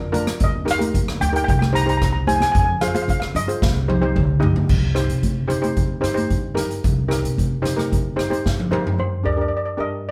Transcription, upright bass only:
Already playing: F2
0.41 D#2
1.08 D#2
1.21 D2
1.48 C2
2.55 F2
3.22 F2
3.35 G2
3.62 C2
4.69 C2
5.08 C3
6.03 G2
6.30 G2
6.85 C2
7.24 C3
8.18 G2
8.46 G2
8.98 G2
9.25 D2
9.79 G2

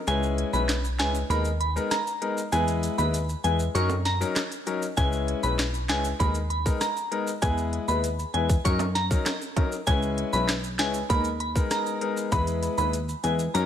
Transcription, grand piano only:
0.07 G#3 C#4 E4 B4
0.53 G#3 C#4 E4 B4
0.99 G#3 C#4 E4 B4
1.30 G#3 B3 D#4 A#4
1.76 G#3 B3 D#4 A#4
2.21 G#3 B3 D#4 A#4
2.52 G#3 B3 E4 B4
2.98 G#3 B3 E4 B4
3.44 G#3 B3 E4 B4
3.75 F#3 C#4 D#4 A#4
4.20 F#3 C#4 D#4 A#4
4.67 F#3 C#4 D#4 A#4
4.97 G#3 C#4 E4 B4
5.43 G#3 C#4 E4 B4
5.89 G#3 C#4 E4 B4
6.19 G#3 B3 D#4 A#4
6.65 G#3 B3 D#4 A#4
7.11 G#3 B3 D#4 A#4
7.42 G#3 B3 E4 B4
7.88 G#3 B3 E4 B4
8.34 G#3 B3 E4 B4
8.64 F#3 C#4 D#4 A#4
9.10 F#3 C#4 D#4 A#4
9.56 F#3 C#4 D#4 A#4
9.87 G#3 C#4 E4 B4
10.33 G#3 C#4 E4 B4
10.79 G#3 C#4 E4 B4
11.09 G#3 B3 D#4 A#4
11.55 G#3 B3 D#4 A#4
12.01 G#3 B3 D#4 A#4
12.32 G#3 B3 E4 B4
12.78 G#3 B3 E4 B4
13.24 G#3 B3 E4 B4
13.54 F#3 C#4 D#4 A#4

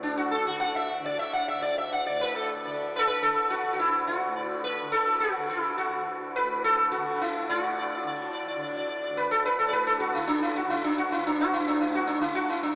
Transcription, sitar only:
0.03 D4
0.17 F#4
0.31 A4
0.47 F#4
0.60 F#5
0.76 E5
1.06 D5
1.19 E5
1.33 F#5
1.48 E5
1.62 D5
1.78 E5
1.92 F#5
2.06 D5
2.21 B4
2.36 A4
2.65 D5
2.96 A4 B4
3.07 B4
3.23 A4
3.50 F#4
3.73 F#4
3.79 E4
4.07 F#4
4.36 D5
4.64 B4
4.92 A4
5.20 F#4
5.50 E4
5.78 F#4
6.36 B4
6.64 A4
6.92 F#4
7.16 F#4
7.21 E4
7.49 F#4 D5
7.63 D5
7.78 D5
7.92 D5
8.07 D5
8.33 D5
8.48 D5
8.62 D5
8.77 D5
8.89 D5
9.04 D5
9.17 B4
9.31 A4
9.45 B4
9.59 A4
9.68 D5
9.73 B4
9.87 A4
10.00 F#4
10.15 E4
10.27 D4
10.42 E4
10.56 F#4
10.70 E4
10.84 D4
10.98 F#4
11.12 E4
11.27 D4
11.41 F#4
11.53 E4
11.68 D4
11.81 E4
11.95 F#4
12.07 D4
12.21 E4
12.35 F#4
12.50 E4
12.63 D4

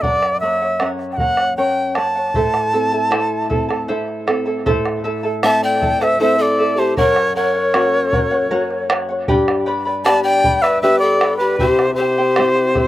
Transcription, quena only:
0.02 D5
0.40 E5
1.12 G5
1.17 F#5
1.57 G5
1.95 A5
5.44 A5
5.64 G5
6.03 E5
6.22 E5
6.41 D5
6.79 C5
6.97 C#5
7.36 C#5
10.04 A5
10.23 G5
10.62 E5
10.82 E5
10.99 D5
11.37 B4
11.56 B4
11.67 C5
11.94 C5

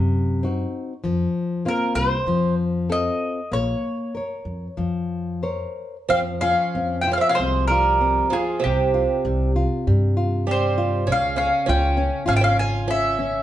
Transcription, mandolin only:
1.68 A#4
1.95 C5
2.92 D#5
3.53 C#5
6.10 F5
6.41 F5
7.01 G5
7.13 F5
7.21 E5
7.29 F5
7.35 C5
7.67 A#4
8.33 G#4
8.64 G4
10.51 C5
11.12 F5
11.38 F5
11.69 G5
12.28 F5
12.36 G5
12.44 F5
12.59 G#5
12.91 E5

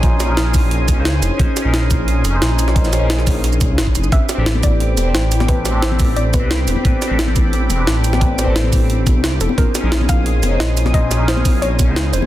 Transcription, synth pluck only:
4.12 E5
4.63 D5
5.14 C5
5.49 B4
5.83 C5
6.16 D5
6.34 B4
9.41 A4
9.58 A#4
10.09 F5
10.60 D#5
10.94 D#5
11.28 C5
11.62 C#5
12.13 C5

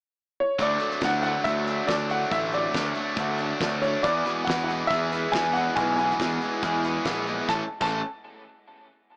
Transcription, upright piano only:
0.40 C#5
0.62 D5
1.05 F#5
1.23 F#5
1.44 E5
1.87 D5
2.11 F#5
2.32 E5
2.54 D5
3.82 C#5
4.03 D5
4.45 F#5
4.64 F#5
4.87 E5
5.32 G#5
5.53 F#5
5.76 G#5
5.96 G#5
7.49 A5
7.82 A5

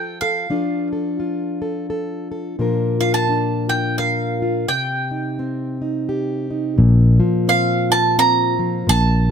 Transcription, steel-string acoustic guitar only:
Already playing: F3 F4 A4
0.22 A4
0.50 F3 D4 F4 A4
0.93 A4
1.20 F4
1.62 A4
1.90 A4
2.32 A4
2.59 A#2 F3 D4 F4 A#4
3.01 F4
3.29 D4
3.71 F4
3.99 A#4
4.42 F4
4.68 C3
5.11 D#4
5.39 C4
5.82 D#4
6.09 G4
6.51 D#4
6.78 A#2
7.20 F3
7.48 C4
7.90 F4
8.18 C4
8.59 F3
8.87 A#2

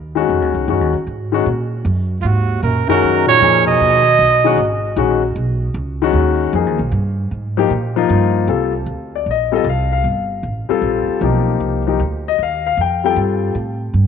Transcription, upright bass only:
Already playing: D#2
0.29 F2
0.42 D#2
0.54 C#2
0.68 F#2
0.81 D#2
0.94 C#2
1.07 G#2
1.46 A#2
1.85 F#2
2.24 G#2
2.63 A#2
2.90 muted upright bass stroke
3.03 F#2
3.41 F2
3.80 D#2
4.19 B1
4.57 G#1
4.96 A#1
5.36 B1
5.74 C#2
6.13 D#2
6.53 F2
6.66 D#2
6.79 B1
6.92 G2
7.31 G#2
7.70 A#2
8.10 G2
8.48 C2
8.86 D2
9.26 A#1
9.64 C2
10.04 G1
10.43 A1
10.69 muted upright bass stroke
10.82 A#1
11.08 muted upright bass stroke
11.21 B1
11.60 C2
11.99 D2
12.39 D#2
12.77 F2
13.16 G2
13.55 A2
13.94 G2

